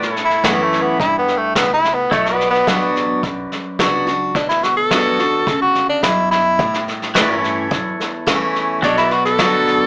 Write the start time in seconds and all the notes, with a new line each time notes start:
Already playing: A2 F#4 B4 D5
0.02 snare
0.10 E4 A4 C#5
0.16 snare
0.25 E4
0.30 snare
0.44 F#2 E3 A3 B3 C#4 E4, kick, snare, hi-hat pedal
0.63 A3
0.72 snare
0.82 B3
1.00 E2 G2 E4, kick, snare
1.18 B3
1.28 muted upright bass stroke, snare
1.37 A3
1.55 C#2 A2 B3, kick, snare, hi-hat pedal
1.74 E4
1.84 snare
1.94 B3
2.11 B1 B2 A3 E4 A4 C#5, kick, snare
2.26 snare
2.32 B3 D5
2.36 F#4 B4, snare
2.50 B3, snare
2.67 A1 F#3 B3 D4 F#4, kick, snare, hi-hat pedal
2.96 snare
3.23 B1 F#2, kick, snare
3.52 muted upright bass stroke, snare
3.79 C#2 F#3 B3 D4 F#4, kick, snare, hi-hat pedal
4.07 D4 F#4, snare
4.35 D2 B2 D4, kick, snare
4.49 E4, snare
4.63 F#4, snare
4.77 A4
4.91 E2 F#3 B3 D4 F#4, kick, snare, hi-hat pedal
5.19 D4 F#4, snare
5.47 D2 C#3, kick, snare
5.62 F#4
5.75 snare
5.89 D4
6.03 F#2 B2 E4, kick, snare, hi-hat pedal
6.31 E4, snare
6.59 A2, kick, snare
6.74 snare
6.87 muted upright bass stroke, snare
7.02 snare
7.14 G2 E3 A3 C#4 E4 F#4 B4 D5, kick, snare, hi-hat pedal
7.37 E4 C#5
7.41 A4, snare
7.71 E2 F#2, kick, snare
8.00 muted upright bass stroke, snare
8.27 E2 E3 A3 C#4 E4, kick, snare, hi-hat pedal
8.55 snare
8.82 B1 B2 D4 F#4 A4 C#5, kick, snare
8.97 E4, snare
9.05 B4 D5
9.11 F#4, snare
9.25 A4, snare
9.38 D2 F#3 B3 D4 F#4, kick, snare, hi-hat pedal
9.67 snare